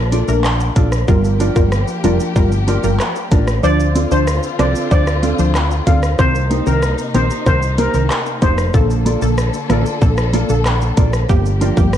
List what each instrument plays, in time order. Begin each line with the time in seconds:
Already playing: fretless electric bass A#1, string section A#2 A#3 D4
0.12 clean electric guitar D4 F4 A4 D5, closed hi-hat, shaker
0.28 fretless electric bass A#1, synth stab A3 D4 A#4, shaker
0.44 cross-stick, clap, shaker
0.60 shaker
0.76 fretless electric bass A#1, clean electric guitar D4 F4 A4 D5, kick, closed hi-hat, shaker
0.92 cross-stick, shaker
1.08 fretless electric bass G1, string section F3 A#3 G4, synth stab G3 F4 A#4, kick, shaker
1.25 shaker
1.40 clean electric guitar D4 F4 A#4 D5, closed hi-hat, shaker
1.56 fretless electric bass G1, synth stab G3 F4 A#4, kick, shaker
1.72 cross-stick, shaker
1.88 shaker
2.04 fretless electric bass F1, synth stab G3 F4 A#4, clean electric guitar D4 F4 A#4 D5, closed hi-hat, shaker
2.20 clean electric guitar D4 F4 A#4 D5, shaker
2.36 fretless electric bass G1, synth stab G3 F4 A#4, kick, shaker
2.52 shaker
2.67 clean electric guitar D4 F4 A#4 D5, closed hi-hat, shaker
2.84 fretless electric bass G1, synth stab G3 F4 A#4, shaker
3.00 cross-stick, clap, shaker
3.16 shaker
3.31 fretless electric bass A1, clean electric guitar D4 F4 A#4 D5, kick, closed hi-hat, shaker
3.48 cross-stick, shaker
3.63 fretless electric bass D2, string section D3 C4 F4, synth stab F3 D4 C5, steel pan D5, shaker
3.80 shaker
3.95 clean electric guitar C4 F4 A4 D5, closed hi-hat, shaker
4.11 fretless electric bass D2, synth stab F3 D4 C5, steel pan C5, shaker
4.27 cross-stick, shaker
4.43 shaker
4.59 fretless electric bass C2, synth stab F3 D4 C5, clean electric guitar C4 F4 A4 D5, steel pan D5, cross-stick, closed hi-hat, shaker
4.75 clean electric guitar C4 F4 A4 D5, shaker
4.91 fretless electric bass D2, synth stab F3 D4 C5, steel pan D5, kick, shaker
5.07 cross-stick, shaker
5.23 clean electric guitar C4 F4 A4 D5, closed hi-hat, shaker
5.39 fretless electric bass D2, synth stab F3 D4 C5, shaker
5.55 cross-stick, clap, shaker
5.71 shaker
5.87 fretless electric bass D2, clean electric guitar C4 F4 A4 D5, steel pan F5, kick, closed hi-hat, shaker
6.03 cross-stick, shaker
6.19 fretless electric bass C2, string section C3 A#3 D#4, synth stab D#3 C4 A#4, steel pan C5, kick, shaker
6.35 shaker
6.50 clean electric guitar A#3 D#4 G4 C5, closed hi-hat, shaker
6.66 fretless electric bass C2, synth stab D#3 C4 A#4, steel pan A#4, shaker
6.83 cross-stick, shaker
6.98 shaker
7.14 fretless electric bass A#1, synth stab D#3 C4 A#4, clean electric guitar A#3 D#4 G4 C5, steel pan C5, closed hi-hat, shaker
7.30 clean electric guitar A#3 D#4 G4 C5, shaker
7.46 fretless electric bass C2, synth stab D#3 C4 A#4, steel pan C5, kick, shaker
7.62 shaker
7.78 clean electric guitar A#3 D#4 G4 C5, steel pan A#4, closed hi-hat, shaker
7.94 fretless electric bass C2, synth stab D#3 C4 A#4, shaker
8.10 cross-stick, clap, shaker
8.26 shaker
8.42 fretless electric bass F1, clean electric guitar A#3 D#4 G4 C5, steel pan C5, kick, closed hi-hat, shaker
8.58 cross-stick, shaker
8.74 fretless electric bass A#1, synth stab D3 A#3 A4, string section D3 A4, kick, shaker
8.90 shaker
9.06 clean electric guitar A#3 F4 A4 D5, closed hi-hat, shaker
9.22 fretless electric bass A#1, synth stab D3 A#3 A4, shaker
9.38 cross-stick, shaker
9.54 shaker
9.69 fretless electric bass A1, synth stab D3 A#3 A4, clean electric guitar A#3 F4 A4 D5, cross-stick, closed hi-hat, shaker
9.85 clean electric guitar A#3 F4 A4 D5, shaker
10.02 fretless electric bass A#1, synth stab D3 A#3 A4, kick, shaker
10.18 cross-stick, shaker
10.33 clean electric guitar A#3 F4 A4 D5, closed hi-hat, shaker
10.49 fretless electric bass A#1, synth stab D3 A#3 A4, shaker
10.66 cross-stick, clap, shaker
10.81 shaker
10.97 fretless electric bass A#1, clean electric guitar A#3 F4 A4 D5, kick, closed hi-hat, shaker
11.13 cross-stick, shaker
11.29 fretless electric bass G1, synth stab F3 A#3 G4, string section F3 A#3 G4, kick, shaker
11.46 shaker
11.61 clean electric guitar D4 F4 A#4 D5, closed hi-hat, shaker
11.77 fretless electric bass G1, synth stab F3 A#3 G4, kick, shaker
11.93 cross-stick, shaker